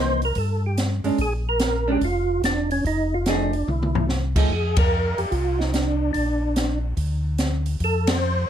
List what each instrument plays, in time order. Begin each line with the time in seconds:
Already playing: tonewheel organ C2 C5, hollow-body jazz guitar E3 A#3 D#4
0.22 tonewheel organ A#4, open hi-hat
0.35 tonewheel organ G2 A4, kick, open hi-hat
0.66 tonewheel organ G4
0.78 snare, closed hi-hat
1.04 tonewheel organ G2, hollow-body jazz guitar G#3 C#4 D4, open hi-hat
1.18 tonewheel organ A#1 G#4, kick, open hi-hat
1.49 tonewheel organ A#4
1.59 snare, closed hi-hat
1.87 hollow-body jazz guitar G#3 C#4 D4
1.92 tonewheel organ G4
2.01 tonewheel organ F1 F4, kick, open hi-hat
2.42 tonewheel organ E1 D4, snare, closed hi-hat
2.71 tonewheel organ C#4, open hi-hat
2.85 tonewheel organ F1 D#4, kick, open hi-hat
3.14 tonewheel organ F4
3.26 hollow-body jazz guitar F3 A3 D#4 G#4, tonewheel organ D4, snare, closed hi-hat
3.53 open hi-hat
3.67 tonewheel organ C2 E4, mid tom
3.83 mid tom
3.95 floor tom
4.09 snare
4.36 hollow-body jazz guitar F3 A3 D#4 G#4, kick, crash
4.50 tonewheel organ F2 G#4, kick
4.76 tonewheel organ A#4, kick, ride
5.18 tonewheel organ F2 G4, open hi-hat
5.31 tonewheel organ C2 F4, kick, open hi-hat
5.58 tonewheel organ D#4, snare
5.72 tonewheel organ D4, snare, closed hi-hat
6.13 tonewheel organ A#1 D4, kick, open hi-hat
6.56 snare, closed hi-hat
6.97 tonewheel organ D2, kick, open hi-hat
7.38 snare, closed hi-hat
7.66 open hi-hat
7.80 tonewheel organ F2, kick, open hi-hat
7.84 tonewheel organ A4
8.07 tonewheel organ C5, snare, ride